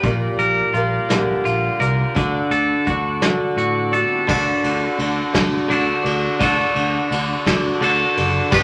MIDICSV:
0, 0, Header, 1, 6, 480
1, 0, Start_track
1, 0, Tempo, 707547
1, 19, Time_signature, 6, 3, 24, 8
1, 5856, End_track
2, 0, Start_track
2, 0, Title_t, "Tonewheel organ"
2, 0, Program_c, 0, 16
2, 24, Note_on_c, 0, 74, 60
2, 26, Note_on_c, 0, 65, 67
2, 28, Note_on_c, 0, 67, 62
2, 28, Note_on_c, 0, 70, 61
2, 1448, Note_off_c, 0, 74, 0
2, 1449, Note_off_c, 0, 65, 0
2, 1450, Note_off_c, 0, 67, 0
2, 1450, Note_off_c, 0, 70, 0
2, 1461, Note_on_c, 0, 66, 67
2, 1463, Note_on_c, 0, 74, 70
2, 1465, Note_on_c, 0, 62, 63
2, 1468, Note_on_c, 0, 69, 65
2, 2708, Note_on_c, 0, 55, 56
2, 2727, Note_on_c, 0, 57, 61
2, 2740, Note_on_c, 0, 59, 53
2, 2760, Note_on_c, 0, 60, 57
2, 2774, Note_off_c, 0, 62, 0
2, 2782, Note_on_c, 0, 62, 58
2, 2801, Note_on_c, 0, 64, 57
2, 2816, Note_on_c, 0, 65, 58
2, 2836, Note_on_c, 0, 67, 58
2, 2846, Note_off_c, 0, 69, 0
2, 2854, Note_on_c, 0, 69, 58
2, 2862, Note_off_c, 0, 55, 0
2, 2872, Note_off_c, 0, 57, 0
2, 2878, Note_off_c, 0, 59, 0
2, 2878, Note_on_c, 0, 71, 56
2, 2887, Note_off_c, 0, 66, 0
2, 2888, Note_off_c, 0, 60, 0
2, 2888, Note_off_c, 0, 74, 0
2, 2898, Note_on_c, 0, 72, 59
2, 2899, Note_off_c, 0, 62, 0
2, 2909, Note_off_c, 0, 64, 0
2, 2909, Note_off_c, 0, 69, 0
2, 2909, Note_on_c, 0, 66, 65
2, 2914, Note_on_c, 0, 74, 63
2, 2916, Note_off_c, 0, 65, 0
2, 2917, Note_on_c, 0, 69, 62
2, 2918, Note_on_c, 0, 62, 66
2, 2926, Note_off_c, 0, 67, 0
2, 2947, Note_off_c, 0, 71, 0
2, 2957, Note_off_c, 0, 72, 0
2, 5756, Note_off_c, 0, 66, 0
2, 5759, Note_off_c, 0, 74, 0
2, 5760, Note_off_c, 0, 69, 0
2, 5761, Note_off_c, 0, 62, 0
2, 5779, Note_on_c, 0, 74, 72
2, 5780, Note_on_c, 0, 67, 68
2, 5780, Note_on_c, 0, 71, 67
2, 5783, Note_on_c, 0, 62, 63
2, 5856, Note_off_c, 0, 62, 0
2, 5856, Note_off_c, 0, 67, 0
2, 5856, Note_off_c, 0, 71, 0
2, 5856, Note_off_c, 0, 74, 0
2, 5856, End_track
3, 0, Start_track
3, 0, Title_t, "Twelve-string acoustic guitar"
3, 0, Program_c, 1, 25
3, 19, Note_on_c, 1, 58, 89
3, 25, Note_on_c, 1, 55, 77
3, 28, Note_on_c, 1, 65, 82
3, 34, Note_on_c, 1, 74, 89
3, 35, Note_on_c, 1, 70, 85
3, 490, Note_off_c, 1, 55, 0
3, 498, Note_on_c, 1, 55, 69
3, 500, Note_off_c, 1, 58, 0
3, 500, Note_off_c, 1, 65, 0
3, 507, Note_off_c, 1, 70, 0
3, 508, Note_on_c, 1, 65, 69
3, 516, Note_on_c, 1, 70, 67
3, 519, Note_off_c, 1, 74, 0
3, 522, Note_on_c, 1, 74, 70
3, 729, Note_off_c, 1, 74, 0
3, 735, Note_off_c, 1, 70, 0
3, 736, Note_off_c, 1, 65, 0
3, 737, Note_on_c, 1, 74, 73
3, 739, Note_off_c, 1, 55, 0
3, 743, Note_on_c, 1, 70, 74
3, 744, Note_on_c, 1, 65, 75
3, 750, Note_on_c, 1, 55, 69
3, 755, Note_on_c, 1, 58, 59
3, 1214, Note_off_c, 1, 74, 0
3, 1217, Note_on_c, 1, 74, 54
3, 1219, Note_off_c, 1, 70, 0
3, 1222, Note_off_c, 1, 65, 0
3, 1225, Note_off_c, 1, 55, 0
3, 1227, Note_on_c, 1, 70, 60
3, 1228, Note_off_c, 1, 58, 0
3, 1238, Note_on_c, 1, 65, 50
3, 1454, Note_on_c, 1, 50, 78
3, 1456, Note_on_c, 1, 62, 89
3, 1458, Note_off_c, 1, 65, 0
3, 1458, Note_off_c, 1, 74, 0
3, 1460, Note_on_c, 1, 66, 91
3, 1462, Note_off_c, 1, 70, 0
3, 1465, Note_on_c, 1, 69, 96
3, 1470, Note_on_c, 1, 74, 90
3, 1924, Note_off_c, 1, 62, 0
3, 1930, Note_off_c, 1, 66, 0
3, 1932, Note_on_c, 1, 62, 69
3, 1937, Note_off_c, 1, 69, 0
3, 1938, Note_off_c, 1, 50, 0
3, 1938, Note_on_c, 1, 66, 68
3, 1945, Note_off_c, 1, 74, 0
3, 1945, Note_on_c, 1, 69, 67
3, 1954, Note_on_c, 1, 74, 76
3, 2171, Note_off_c, 1, 74, 0
3, 2176, Note_off_c, 1, 62, 0
3, 2179, Note_off_c, 1, 66, 0
3, 2179, Note_on_c, 1, 74, 83
3, 2181, Note_off_c, 1, 69, 0
3, 2189, Note_on_c, 1, 66, 67
3, 2189, Note_on_c, 1, 69, 75
3, 2194, Note_on_c, 1, 62, 73
3, 2200, Note_on_c, 1, 50, 70
3, 2648, Note_off_c, 1, 74, 0
3, 2656, Note_on_c, 1, 74, 61
3, 2662, Note_off_c, 1, 69, 0
3, 2665, Note_off_c, 1, 66, 0
3, 2667, Note_off_c, 1, 62, 0
3, 2670, Note_on_c, 1, 69, 46
3, 2671, Note_off_c, 1, 50, 0
3, 2683, Note_on_c, 1, 66, 45
3, 2896, Note_on_c, 1, 50, 84
3, 2897, Note_on_c, 1, 62, 93
3, 2898, Note_off_c, 1, 66, 0
3, 2898, Note_off_c, 1, 74, 0
3, 2899, Note_off_c, 1, 69, 0
3, 2906, Note_on_c, 1, 66, 90
3, 2907, Note_on_c, 1, 69, 88
3, 2908, Note_on_c, 1, 74, 88
3, 3370, Note_off_c, 1, 62, 0
3, 3371, Note_off_c, 1, 66, 0
3, 3373, Note_on_c, 1, 62, 67
3, 3379, Note_off_c, 1, 69, 0
3, 3379, Note_on_c, 1, 66, 67
3, 3387, Note_on_c, 1, 69, 71
3, 3389, Note_off_c, 1, 74, 0
3, 3392, Note_on_c, 1, 74, 77
3, 3610, Note_off_c, 1, 74, 0
3, 3615, Note_off_c, 1, 69, 0
3, 3616, Note_off_c, 1, 66, 0
3, 3617, Note_off_c, 1, 62, 0
3, 3618, Note_on_c, 1, 74, 86
3, 3623, Note_on_c, 1, 69, 76
3, 3625, Note_on_c, 1, 66, 70
3, 3627, Note_on_c, 1, 62, 70
3, 3629, Note_off_c, 1, 50, 0
3, 3632, Note_on_c, 1, 50, 60
3, 4088, Note_off_c, 1, 74, 0
3, 4091, Note_on_c, 1, 74, 61
3, 4095, Note_off_c, 1, 69, 0
3, 4103, Note_off_c, 1, 66, 0
3, 4103, Note_on_c, 1, 69, 52
3, 4106, Note_off_c, 1, 50, 0
3, 4114, Note_on_c, 1, 66, 50
3, 4332, Note_on_c, 1, 50, 85
3, 4333, Note_off_c, 1, 66, 0
3, 4335, Note_off_c, 1, 69, 0
3, 4336, Note_off_c, 1, 62, 0
3, 4336, Note_off_c, 1, 74, 0
3, 4338, Note_on_c, 1, 62, 84
3, 4341, Note_on_c, 1, 66, 94
3, 4343, Note_on_c, 1, 69, 93
3, 4347, Note_on_c, 1, 74, 93
3, 4808, Note_off_c, 1, 62, 0
3, 4816, Note_off_c, 1, 50, 0
3, 4816, Note_on_c, 1, 62, 67
3, 4817, Note_off_c, 1, 66, 0
3, 4822, Note_off_c, 1, 69, 0
3, 4824, Note_off_c, 1, 74, 0
3, 4826, Note_on_c, 1, 66, 72
3, 4835, Note_on_c, 1, 69, 70
3, 4844, Note_on_c, 1, 74, 76
3, 5050, Note_off_c, 1, 74, 0
3, 5055, Note_off_c, 1, 69, 0
3, 5058, Note_off_c, 1, 62, 0
3, 5059, Note_off_c, 1, 66, 0
3, 5059, Note_on_c, 1, 74, 85
3, 5063, Note_on_c, 1, 69, 72
3, 5067, Note_on_c, 1, 66, 71
3, 5073, Note_on_c, 1, 62, 69
3, 5075, Note_on_c, 1, 50, 61
3, 5526, Note_off_c, 1, 74, 0
3, 5534, Note_on_c, 1, 74, 62
3, 5541, Note_off_c, 1, 69, 0
3, 5543, Note_off_c, 1, 66, 0
3, 5546, Note_off_c, 1, 62, 0
3, 5547, Note_off_c, 1, 50, 0
3, 5549, Note_on_c, 1, 69, 56
3, 5558, Note_on_c, 1, 66, 47
3, 5769, Note_on_c, 1, 55, 86
3, 5773, Note_on_c, 1, 59, 94
3, 5776, Note_off_c, 1, 74, 0
3, 5778, Note_off_c, 1, 66, 0
3, 5780, Note_on_c, 1, 62, 95
3, 5781, Note_off_c, 1, 69, 0
3, 5783, Note_on_c, 1, 67, 97
3, 5789, Note_on_c, 1, 71, 103
3, 5856, Note_off_c, 1, 55, 0
3, 5856, Note_off_c, 1, 59, 0
3, 5856, Note_off_c, 1, 62, 0
3, 5856, Note_off_c, 1, 67, 0
3, 5856, Note_off_c, 1, 71, 0
3, 5856, End_track
4, 0, Start_track
4, 0, Title_t, "Clean electric guitar"
4, 0, Program_c, 2, 27
4, 22, Note_on_c, 2, 46, 72
4, 263, Note_on_c, 2, 70, 78
4, 746, Note_on_c, 2, 50, 69
4, 984, Note_on_c, 2, 65, 72
4, 1213, Note_off_c, 2, 70, 0
4, 1222, Note_off_c, 2, 46, 0
4, 1458, Note_off_c, 2, 50, 0
4, 1462, Note_off_c, 2, 65, 0
4, 1705, Note_on_c, 2, 69, 74
4, 2427, Note_on_c, 2, 66, 73
4, 2658, Note_off_c, 2, 69, 0
4, 2904, Note_off_c, 2, 66, 0
4, 3856, Note_on_c, 2, 50, 71
4, 3867, Note_on_c, 2, 62, 85
4, 3875, Note_on_c, 2, 66, 77
4, 3882, Note_on_c, 2, 69, 75
4, 4324, Note_off_c, 2, 50, 0
4, 4333, Note_off_c, 2, 66, 0
4, 4337, Note_off_c, 2, 69, 0
4, 4348, Note_off_c, 2, 62, 0
4, 5298, Note_on_c, 2, 50, 81
4, 5306, Note_on_c, 2, 62, 73
4, 5312, Note_on_c, 2, 66, 83
4, 5318, Note_on_c, 2, 69, 83
4, 5764, Note_off_c, 2, 50, 0
4, 5768, Note_off_c, 2, 62, 0
4, 5771, Note_off_c, 2, 66, 0
4, 5774, Note_off_c, 2, 69, 0
4, 5856, End_track
5, 0, Start_track
5, 0, Title_t, "Picked electric bass"
5, 0, Program_c, 3, 34
5, 24, Note_on_c, 3, 34, 92
5, 179, Note_off_c, 3, 34, 0
5, 257, Note_on_c, 3, 34, 83
5, 415, Note_off_c, 3, 34, 0
5, 502, Note_on_c, 3, 34, 81
5, 658, Note_off_c, 3, 34, 0
5, 746, Note_on_c, 3, 34, 96
5, 900, Note_off_c, 3, 34, 0
5, 989, Note_on_c, 3, 34, 85
5, 1143, Note_off_c, 3, 34, 0
5, 1219, Note_on_c, 3, 36, 92
5, 1376, Note_off_c, 3, 36, 0
5, 1468, Note_on_c, 3, 38, 95
5, 1622, Note_off_c, 3, 38, 0
5, 1700, Note_on_c, 3, 38, 84
5, 1856, Note_off_c, 3, 38, 0
5, 1946, Note_on_c, 3, 38, 90
5, 2257, Note_off_c, 3, 38, 0
5, 2418, Note_on_c, 3, 45, 85
5, 2732, Note_off_c, 3, 45, 0
5, 2907, Note_on_c, 3, 38, 89
5, 3054, Note_off_c, 3, 38, 0
5, 3144, Note_on_c, 3, 38, 79
5, 3292, Note_off_c, 3, 38, 0
5, 3382, Note_on_c, 3, 38, 91
5, 3531, Note_off_c, 3, 38, 0
5, 3626, Note_on_c, 3, 38, 93
5, 3773, Note_off_c, 3, 38, 0
5, 3866, Note_on_c, 3, 38, 93
5, 4013, Note_off_c, 3, 38, 0
5, 4101, Note_on_c, 3, 38, 92
5, 4250, Note_off_c, 3, 38, 0
5, 4349, Note_on_c, 3, 38, 98
5, 4496, Note_off_c, 3, 38, 0
5, 4579, Note_on_c, 3, 38, 86
5, 4729, Note_off_c, 3, 38, 0
5, 4822, Note_on_c, 3, 38, 93
5, 4970, Note_off_c, 3, 38, 0
5, 5065, Note_on_c, 3, 38, 101
5, 5212, Note_off_c, 3, 38, 0
5, 5300, Note_on_c, 3, 38, 88
5, 5449, Note_off_c, 3, 38, 0
5, 5546, Note_on_c, 3, 30, 90
5, 5693, Note_off_c, 3, 30, 0
5, 5783, Note_on_c, 3, 31, 102
5, 5856, Note_off_c, 3, 31, 0
5, 5856, End_track
6, 0, Start_track
6, 0, Title_t, "Drums"
6, 24, Note_on_c, 9, 36, 114
6, 24, Note_on_c, 9, 42, 86
6, 92, Note_off_c, 9, 36, 0
6, 92, Note_off_c, 9, 42, 0
6, 263, Note_on_c, 9, 42, 70
6, 331, Note_off_c, 9, 42, 0
6, 503, Note_on_c, 9, 42, 69
6, 571, Note_off_c, 9, 42, 0
6, 745, Note_on_c, 9, 42, 91
6, 747, Note_on_c, 9, 38, 110
6, 813, Note_off_c, 9, 42, 0
6, 815, Note_off_c, 9, 38, 0
6, 987, Note_on_c, 9, 42, 63
6, 1054, Note_off_c, 9, 42, 0
6, 1229, Note_on_c, 9, 42, 73
6, 1297, Note_off_c, 9, 42, 0
6, 1465, Note_on_c, 9, 42, 105
6, 1468, Note_on_c, 9, 36, 114
6, 1533, Note_off_c, 9, 42, 0
6, 1535, Note_off_c, 9, 36, 0
6, 1702, Note_on_c, 9, 42, 70
6, 1770, Note_off_c, 9, 42, 0
6, 1945, Note_on_c, 9, 42, 67
6, 1947, Note_on_c, 9, 36, 78
6, 2013, Note_off_c, 9, 42, 0
6, 2015, Note_off_c, 9, 36, 0
6, 2183, Note_on_c, 9, 42, 97
6, 2185, Note_on_c, 9, 38, 108
6, 2251, Note_off_c, 9, 42, 0
6, 2253, Note_off_c, 9, 38, 0
6, 2426, Note_on_c, 9, 42, 73
6, 2494, Note_off_c, 9, 42, 0
6, 2671, Note_on_c, 9, 42, 72
6, 2738, Note_off_c, 9, 42, 0
6, 2908, Note_on_c, 9, 36, 116
6, 2909, Note_on_c, 9, 49, 123
6, 2976, Note_off_c, 9, 36, 0
6, 2976, Note_off_c, 9, 49, 0
6, 3148, Note_on_c, 9, 51, 70
6, 3215, Note_off_c, 9, 51, 0
6, 3386, Note_on_c, 9, 51, 66
6, 3454, Note_off_c, 9, 51, 0
6, 3626, Note_on_c, 9, 51, 92
6, 3627, Note_on_c, 9, 36, 84
6, 3628, Note_on_c, 9, 38, 112
6, 3694, Note_off_c, 9, 36, 0
6, 3694, Note_off_c, 9, 51, 0
6, 3696, Note_off_c, 9, 38, 0
6, 3869, Note_on_c, 9, 51, 69
6, 3937, Note_off_c, 9, 51, 0
6, 4108, Note_on_c, 9, 51, 75
6, 4175, Note_off_c, 9, 51, 0
6, 4346, Note_on_c, 9, 36, 118
6, 4346, Note_on_c, 9, 51, 105
6, 4414, Note_off_c, 9, 36, 0
6, 4414, Note_off_c, 9, 51, 0
6, 4584, Note_on_c, 9, 51, 71
6, 4652, Note_off_c, 9, 51, 0
6, 4828, Note_on_c, 9, 51, 78
6, 4896, Note_off_c, 9, 51, 0
6, 5065, Note_on_c, 9, 36, 82
6, 5066, Note_on_c, 9, 51, 105
6, 5068, Note_on_c, 9, 38, 115
6, 5133, Note_off_c, 9, 36, 0
6, 5134, Note_off_c, 9, 51, 0
6, 5136, Note_off_c, 9, 38, 0
6, 5305, Note_on_c, 9, 51, 76
6, 5373, Note_off_c, 9, 51, 0
6, 5544, Note_on_c, 9, 51, 78
6, 5612, Note_off_c, 9, 51, 0
6, 5778, Note_on_c, 9, 49, 127
6, 5782, Note_on_c, 9, 36, 124
6, 5846, Note_off_c, 9, 49, 0
6, 5850, Note_off_c, 9, 36, 0
6, 5856, End_track
0, 0, End_of_file